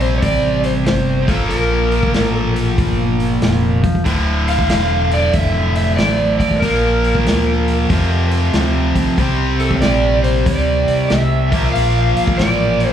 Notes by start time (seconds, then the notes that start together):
Already playing: A#1 C3 G3 C4
0.01 C5, open hi-hat
0.18 C#5
0.22 A1 D5, kick, open hi-hat
0.64 C5, open hi-hat
0.86 G1 C5, snare, open hi-hat
1.27 A#2 F3 A#3 A4, kick, open hi-hat
1.49 A#1 A#4, open hi-hat
1.92 open hi-hat
2.03 kick
2.14 A1, snare, open hi-hat
2.31 A4
2.56 open hi-hat
2.78 G1, kick, open hi-hat
3.20 open hi-hat
3.42 F1, snare, open hi-hat
3.84 kick, open hi-hat
3.95 kick
4.05 D1 D2 A2 D3, kick, open hi-hat
4.48 F5, open hi-hat
4.59 kick
4.70 E1 F5, snare, open hi-hat
5.11 D5, open hi-hat
5.33 F1 E5, kick, open hi-hat
5.75 E5, open hi-hat
5.96 A1 D5, snare, open hi-hat
6.39 D5, kick, open hi-hat
6.51 kick
6.56 A4 A#4
6.62 A#1 A#2 F3 A#3, kick, open hi-hat
7.04 open hi-hat
7.15 kick
7.26 D2, snare, open hi-hat
7.68 open hi-hat
7.90 F2 C3 F3, kick, open hi-hat
8.31 open hi-hat
8.54 D2, snare, open hi-hat
8.96 muted fingered electric bass stroke, kick, open hi-hat
9.18 C2 C3 G3 C4, kick, open hi-hat
9.60 A4, open hi-hat
9.71 kick
9.76 C#5
9.81 A#1 D5, snare, open hi-hat
10.24 C5, open hi-hat
10.45 D2 D5, kick, open hi-hat
10.88 muted fingered electric bass stroke, open hi-hat
11.08 C2 E5, snare, open hi-hat
11.51 A#2 F3 A#3, kick, open hi-hat
11.72 A#1 F5, open hi-hat
12.17 muted fingered electric bass stroke, open hi-hat
12.27 kick
12.38 A1 D5, snare, open hi-hat
12.80 open hi-hat
12.89 C5